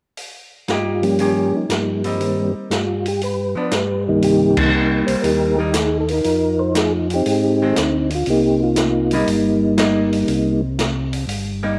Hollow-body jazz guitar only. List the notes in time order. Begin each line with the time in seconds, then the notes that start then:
0.70 A#3 D#4 G4
1.20 D#3 A#3 C#4 G4
2.05 G3 C4 D#4
3.55 F3 B3 D4
5.59 G3 A#3 D#4
7.62 D#3 G#3 C4
9.13 G3 A#3 D#4
9.78 G3 A#3 D#4
11.63 G3 A#3 D#4